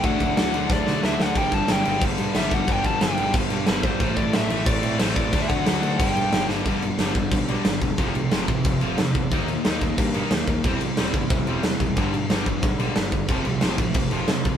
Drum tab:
CC |xxxx----|xxxxxxxx|xxxxxxxx|xxxxxxxx|
SD |--o-oooo|--o---o-|--o---o-|--o---o-|
BD |oo--o---|oo--o--o|oo--o--o|oo--o--o|

CC |xxxxxxx-|xxxxxxxx|xxxxxxxx|xxxxxxxx|
SD |--o---oo|--o---o-|--o---o-|--o---o-|
BD |oo--o---|o--oo--o|o--oo--o|o--oo--o|

CC |xxxxxxxx|xxxxxxxx|xxxxxxxx|
SD |--o---o-|--o---o-|--o---o-|
BD |o--oo--o|o--oo--o|o--oo--o|